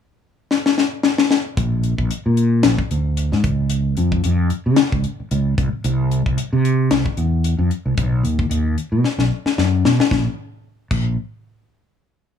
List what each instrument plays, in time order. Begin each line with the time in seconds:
0.51 snare
0.66 snare
0.78 snare
1.03 snare
1.18 snare
1.31 snare
1.57 fretless electric bass A#1, kick, closed hi-hat
1.83 closed hi-hat
1.98 fretless electric bass A#1, kick
2.11 closed hi-hat
2.26 fretless electric bass A#2
2.37 closed hi-hat
2.63 fretless electric bass A#1, snare, closed hi-hat
2.79 kick
2.91 fretless electric bass D2, closed hi-hat
3.17 closed hi-hat
3.32 fretless electric bass G#2, snare
3.44 fretless electric bass C#2, kick, closed hi-hat
3.70 closed hi-hat
3.97 fretless electric bass F2, closed hi-hat
4.12 kick
4.24 fretless electric bass F2, closed hi-hat
4.50 muted fretless electric bass stroke, closed hi-hat
4.66 fretless electric bass C#3
4.76 snare, closed hi-hat
4.92 fretless electric bass C#2, kick
5.04 closed hi-hat
5.20 muted fretless electric bass stroke
5.31 fretless electric bass C#2, closed hi-hat
5.58 fretless electric bass C2, kick, closed hi-hat
5.73 muted fretless electric bass stroke
5.84 fretless electric bass C2, closed hi-hat
6.12 closed hi-hat
6.26 fretless electric bass C2, kick
6.38 closed hi-hat
6.53 fretless electric bass C3
6.65 closed hi-hat
6.91 fretless electric bass C2, snare, closed hi-hat
7.06 kick
7.17 fretless electric bass E2, closed hi-hat
7.44 closed hi-hat
7.59 fretless electric bass F2
7.71 closed hi-hat
7.85 fretless electric bass C2
7.97 fretless electric bass B1, kick, closed hi-hat
8.23 fretless electric bass D#2, closed hi-hat
8.39 kick
8.49 fretless electric bass D#2, closed hi-hat
8.76 muted fretless electric bass stroke, closed hi-hat
8.92 fretless electric bass B2
9.04 snare
9.18 fretless electric bass B1, snare
9.45 muted fretless electric bass stroke, snare
9.58 fretless electric bass F#2, snare
9.85 fretless electric bass B2, snare
10.00 muted fretless electric bass stroke, snare
10.11 fretless electric bass A#1, kick, snare
10.91 fretless electric bass A#1, kick, crash